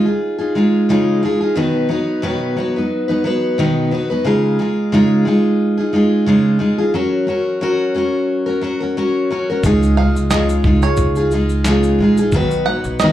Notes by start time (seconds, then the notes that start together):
0.06 D#4 F4 G#4
0.39 D#4 F4 G#4
0.55 G#3 D#4 F4 G#4
0.89 C#3 G#3 D#4 F4 G#4
1.23 G#3 D#4 F4 G#4
1.41 D#4 F4 G#4
1.55 B2 D#3 F#3 B3 D#4 B4
1.89 F#3 B3 D#4 B4
2.22 B2 D#3 F#3 B3 D#4 B4
2.57 F#3 B3 D#4 B4
2.76 F#3 B3 D#4 B4
3.08 F#3 B3 D#4 B4
3.24 F#3 B3 D#4 B4
3.58 B2 D#3 F#3 B3 D#4 B4
3.91 F#3 B3 D#4 B4
4.10 F#3 B3 D#4 B4
4.25 C#3 G#3 D#4 F4 G#4
4.59 G#3 D#4 F4 G#4
4.92 C#3 G#3 D#4 F4 G#4
5.25 G#3 D#4 F4 G#4
5.78 D#4 F4 G#4
5.93 G#3 D#4 F4 G#4
6.26 C#3 G#3 D#4 F4 G#4
6.59 G#3 D#4 F4 G#4
6.78 D#4 F4 G#4
6.94 F#3 C#4 F#4 A#4
7.27 F#3 C#4 F#4 A#4
7.61 F#3 C#4 F#4 A#4
7.95 F#3 C#4 F#4 A#4
8.46 C#4 F#4 A#4
8.61 F#3 C#4 F#4 A#4
8.80 C#4 F#4 A#4
8.97 F#3 C#4 F#4 A#4
9.31 F#3 C#4 F#4 A#4
9.50 C#4 F#4 A#4
9.63 C#2 C#3 G#3 D#4 F4 G#4, kick, shaker
9.83 shaker
9.97 G#3 D#4 F4 G#4 F5
10.15 C#2, shaker
10.30 C#3 G#3 D#4 F4 G#4 D#5, snare, clap, shaker
10.49 shaker
10.64 C#2 G#3 D#4 F4 G#4, kick
10.82 F4 G#4 C#5, shaker
10.87 D#4
10.97 C#2, kick, shaker
11.15 F4 G#4, shaker
11.20 D#4
11.31 G#3 D#4 F4, shaker
11.35 G#4
11.49 shaker
11.64 C#3 G#3 D#4, snare, clap, shaker
11.69 F4 G#4
11.83 shaker
11.99 A#1 G#3 D#4 F4
12.04 G#4
12.17 F4 G#4, shaker
12.22 D#4
12.32 B1 B2 D#3 F#3 B3, kick, shaker
12.36 D#4 B4
12.51 shaker
12.66 F#3 B3 D#4 F#5
12.71 B4
12.84 B1, shaker
12.99 B2 D#3 F#3 B3 D#5, snare, clap, shaker
13.04 D#4 B4